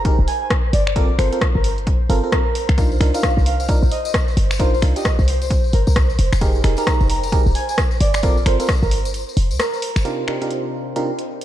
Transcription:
Already playing: 808-style bass F1, ambient pad C5
0.05 fm electric piano D#4 G4 G#4 A#4, kick, closed hi-hat
0.19 808-style bass D#1
0.27 soft synth lead G#5, open hi-hat
0.41 soft synth lead G#5
0.50 kick, cross-stick, closed hi-hat
0.73 808-style bass G1, soft synth lead D5, open hi-hat
0.87 soft synth lead D5, finger snap
0.95 fm electric piano C4 F4 A4 A#4, soft synth lead D5, kick, closed hi-hat
1.18 808-style bass G1, fm electric piano C4 F4 A4 A#4, soft synth lead C5, finger snap, open hi-hat
1.32 fm electric piano C4 F4 A4 A#4, soft synth lead C5, closed hi-hat
1.41 kick, cross-stick, closed hi-hat
1.55 808-style bass G1, soft synth lead A#4
1.64 soft synth lead A#4, open hi-hat
1.78 closed hi-hat
1.87 kick, closed hi-hat
2.10 808-style bass G1, fm electric piano C4 F4 A4 A#4, open hi-hat
2.24 fm electric piano C4 F4 A4 A#4
2.32 soft synth lead A#4, kick, cross-stick, closed hi-hat
2.55 open hi-hat
2.69 808-style bass C2, finger snap, closed hi-hat
2.78 fm electric piano D4 D#4 F4 A#4, kick, closed hi-hat, tambourine
2.92 tambourine
3.00 808-style bass C2, fm electric piano D4 D#4 F4 A#4, finger snap, open hi-hat
3.14 fm electric piano D4 D#4 F4 A#4, soft synth lead F5, closed hi-hat, tambourine
3.23 soft synth lead F5, kick, cross-stick, closed hi-hat, tambourine
3.37 808-style bass C2, tambourine
3.46 soft synth lead F5, open hi-hat
3.60 soft synth lead F5, closed hi-hat, tambourine
3.68 fm electric piano D4 D#4 F4 A#4, kick, closed hi-hat, tambourine
3.83 808-style bass A#1, tambourine
3.91 soft synth lead D#5, open hi-hat
4.05 soft synth lead D#5, tambourine
4.14 kick, cross-stick, closed hi-hat, tambourine
4.28 tambourine
4.37 808-style bass G1, open hi-hat
4.51 finger snap, tambourine
4.60 fm electric piano D4 D#4 F4 A#4, soft synth lead C5, kick, closed hi-hat, tambourine
4.73 soft synth lead C5, tambourine
4.82 808-style bass C2, fm electric piano D4 D#4 F4 A#4, finger snap, open hi-hat
4.96 fm electric piano D4 D#4 F4 G4, soft synth lead D#5, closed hi-hat, tambourine
5.05 kick, cross-stick, closed hi-hat, tambourine
5.19 808-style bass C2, tambourine
5.28 soft synth lead C5, open hi-hat
5.42 soft synth lead C5, closed hi-hat, tambourine
5.50 kick, closed hi-hat, tambourine
5.64 tambourine
5.73 808-style bass G1, soft synth lead A#4, open hi-hat
5.87 808-style bass C2, soft synth lead A#4, tambourine
5.96 kick, cross-stick, closed hi-hat, tambourine
6.10 tambourine
6.19 808-style bass F1, open hi-hat
6.33 808-style bass F1, finger snap, tambourine
6.41 fm electric piano D#4 G4 G#4 A#4, kick, closed hi-hat, tambourine
6.55 tambourine
6.64 808-style bass F1, fm electric piano D#4 G4 G#4 A#4, finger snap, open hi-hat
6.77 fm electric piano D#4 G4 G#4 A#4, soft synth lead A#5, closed hi-hat, tambourine
6.87 soft synth lead A#5, kick, cross-stick, closed hi-hat, tambourine
7.00 808-style bass F1, tambourine
7.10 soft synth lead A#5, open hi-hat
7.23 soft synth lead A#5, closed hi-hat, tambourine
7.32 fm electric piano D#4 G4 G#4 A#4, kick, closed hi-hat, tambourine
7.46 808-style bass D#1, tambourine
7.55 soft synth lead G#5, open hi-hat
7.69 soft synth lead G#5, tambourine
7.78 kick, cross-stick, closed hi-hat, tambourine
7.91 tambourine
8.00 808-style bass G1, soft synth lead D5, open hi-hat
8.14 soft synth lead D5, finger snap, tambourine
8.23 fm electric piano C4 F4 A4 A#4, soft synth lead D5, kick, closed hi-hat, tambourine
8.37 tambourine
8.46 808-style bass G1, fm electric piano C4 F4 A4 A#4, soft synth lead C5, finger snap, open hi-hat
8.60 fm electric piano C4 F4 A4 A#4, soft synth lead C5, closed hi-hat, tambourine
8.69 kick, cross-stick, closed hi-hat, tambourine
8.83 808-style bass G1, soft synth lead A#4, tambourine
8.91 soft synth lead A#4, open hi-hat
9.05 closed hi-hat, tambourine
9.14 closed hi-hat, tambourine
9.29 tambourine
9.37 808-style bass F1, open hi-hat
9.51 808-style bass D2, tambourine
9.59 soft synth lead A#4, cross-stick, closed hi-hat, tambourine
9.73 tambourine
9.82 open hi-hat
9.96 808-style bass G1, finger snap, closed hi-hat, tambourine
10.05 fm electric piano C3 D4 D#4 F4 G4 A#4, ambient pad C5, closed hi-hat
10.28 fm electric piano C3 D4 D#4 F4 G4 A#4, finger snap
10.42 fm electric piano C3 D4 D#4 F4 G4 A#4, closed hi-hat
10.51 closed hi-hat
10.96 fm electric piano C3 D4 D#4 F4 G4 A#4, closed hi-hat
11.19 closed hi-hat
11.41 closed hi-hat

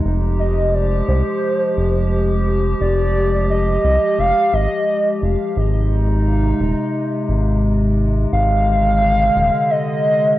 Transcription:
Already playing: ambient pad G#3
0.05 analog synth bass F1, ambient pad F3 G4
0.39 soft synth lead D#5
0.74 soft synth lead D5
1.08 analog synth bass C2, soft synth lead C5
1.77 analog synth bass F1
2.80 analog synth bass F1, soft synth lead D5
3.50 soft synth lead D#5
3.84 analog synth bass C2
4.18 analog synth bass F1, soft synth lead F5
4.53 analog synth bass G#1, soft synth lead D#5
5.22 analog synth bass F1
5.56 analog synth bass G#1, ambient pad C3 G#3 D#4
6.60 analog synth bass D#1
7.29 analog synth bass G#1
8.32 analog synth bass G#1, ambient pad D3, soft synth lead F5
9.36 analog synth bass D#1
9.70 soft synth lead D#5

